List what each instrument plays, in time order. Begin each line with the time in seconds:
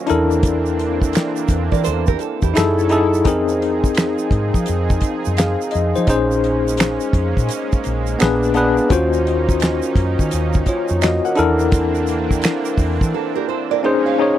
0.07 fingered electric bass E2, analog synth pad E3 A#3 C4 D4, tine electric piano D4 E4 A4 A#4, closed hi-hat, shaker
0.31 shaker
0.43 kick, closed hi-hat, shaker
0.66 shaker
0.79 closed hi-hat
1.02 kick, shaker
1.13 finger snap, snare, closed hi-hat, shaker
1.36 shaker
1.48 fingered electric bass E2, kick, closed hi-hat, shaker
1.72 fingered electric bass E3, nylon-string guitar A#4 D5, kick, shaker
1.84 fingered electric bass E2, nylon-string guitar A4 C5, closed hi-hat, shaker
2.07 nylon-string guitar G4 A#4, kick, shaker
2.19 nylon-string guitar A4, closed hi-hat, shaker
2.42 fingered electric bass E2, nylon-string guitar E4 G4, kick, shaker
2.54 fingered electric bass F#2, analog synth pad F#3 C#4 E4 A4, tine electric piano D#4 E4 G#4 A4, finger snap, closed hi-hat, shaker
2.58 snare
2.79 shaker
2.89 tine electric piano D#4 E4 G#4 A4, closed hi-hat, shaker
3.14 shaker
3.25 fingered electric bass F2, analog synth pad F3 C4 D#4 G#4, tine electric piano C4 D#4 G#4 A#4, kick, closed hi-hat, shaker
3.48 shaker
3.62 closed hi-hat
3.84 kick, shaker
3.95 finger snap, snare, closed hi-hat, shaker
4.18 shaker
4.31 fingered electric bass G#2, kick, closed hi-hat
4.54 fingered electric bass F3, kick, shaker
4.66 fingered electric bass F2, closed hi-hat, shaker
4.90 kick, shaker
5.01 kick, closed hi-hat, shaker
5.25 fingered electric bass F#2, shaker
5.37 tine electric piano G#4 F5, finger snap, snare, closed hi-hat, shaker
5.61 shaker
5.71 tine electric piano D#5, closed hi-hat, shaker
5.75 fingered electric bass F2
5.96 fingered electric bass F3, tine electric piano D#4 C5, shaker
6.07 fingered electric bass A#1, analog synth pad G#3 A#3 C#4, tine electric piano C#4 D#4 G#4 C5, kick, closed hi-hat, shaker
6.31 shaker
6.44 closed hi-hat
6.68 shaker
6.77 finger snap, snare, closed hi-hat, shaker
7.00 shaker
7.13 fingered electric bass F2, kick, closed hi-hat
7.37 fingered electric bass A#2, kick, shaker
7.49 closed hi-hat, shaker
7.72 muted fingered electric bass stroke, kick, shaker
7.84 fingered electric bass A#1, closed hi-hat, shaker
8.07 shaker
8.19 fingered electric bass A#1, tine electric piano B3 D4 G#4, analog synth pad D4, finger snap, closed hi-hat, shaker
8.22 tine electric piano B4, finger snap, snare
8.43 shaker
8.54 tine electric piano B3 D4 G#4 B4, closed hi-hat, shaker
8.78 shaker
8.89 fingered electric bass D#2, analog synth pad D#3 C#4 D#4, tine electric piano C#4 F4 F#4 C5, kick, closed hi-hat, shaker
9.13 shaker
9.27 closed hi-hat
9.49 kick, shaker
9.60 finger snap, snare, closed hi-hat, shaker
9.82 shaker
9.95 fingered electric bass F#2, kick, closed hi-hat
10.19 fingered electric bass D#3, kick, shaker
10.31 fingered electric bass D#2, closed hi-hat, shaker
10.53 kick, shaker
10.66 tine electric piano F4 C#5, kick, closed hi-hat, shaker
10.88 fingered electric bass F2, shaker
11.01 tine electric piano F#4 D#5, finger snap, snare, closed hi-hat, shaker
11.25 tine electric piano A#4 F#5, shaker
11.35 fingered electric bass E2, analog synth pad E3 A#3 C4 D4, tine electric piano D4 E4 A4 A#4, closed hi-hat, shaker
11.59 shaker
11.72 kick, closed hi-hat, shaker
11.95 shaker
12.07 closed hi-hat, shaker
12.31 kick, shaker
12.42 finger snap, snare, closed hi-hat, shaker
12.65 shaker
12.78 fingered electric bass E2, kick, open hi-hat, shaker
13.01 fingered electric bass E3, kick, shaker
13.14 nylon-string guitar A4
13.35 nylon-string guitar G4 A#4
13.49 nylon-string guitar A4 C5
13.71 nylon-string guitar A#4 D5
13.83 analog synth pad G#3 A#3 C#4, tine electric piano C#4 D#4 G#4 C5, nylon-string guitar A#4 C#5
14.06 nylon-string guitar C#5 F5
14.19 tine electric piano C#4 D#4 G#4 C#5